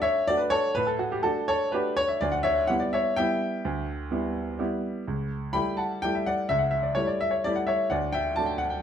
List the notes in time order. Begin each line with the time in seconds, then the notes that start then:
Already playing: A3 D4 F#4
0.02 C#5 E5
0.27 A3 D4 F#4 D5
0.37 B4
0.50 A4 C#5
0.75 A2 B4
0.87 A4
0.99 F#4
1.12 G4
1.23 A3 D4 F#4 A4
1.48 A4 C#5
1.72 A3 D4 F#4 G4 B4
1.97 C#5
2.08 E5
2.21 D2 D5
2.32 F#5
2.43 C#5 E5
2.67 G3 B3 E4 F#5
2.80 D5
2.93 C#5 E5
3.16 G3 B3 E4 E5 G5
3.65 D2
4.11 G3 B3 E4
4.59 G3 B3 E4
5.08 C#2
5.53 G3 A3 E4 G5 B5
5.77 F#5 A5
6.02 G3 A3 E4 G5
6.15 E5
6.26 D5 F#5
6.49 C#2 E5
6.59 F#5
6.71 E5
6.83 D5
6.95 G3 A3 E4 C#5
7.07 D5
7.21 E5
7.31 C#5
7.44 G3 A3 E4 D5
7.56 F#5
7.67 C#5 E5
7.90 D2 D5 F#5
8.12 E5 G5
8.36 F#3 A3 D4 A5
8.46 G5
8.58 F#5
8.70 G5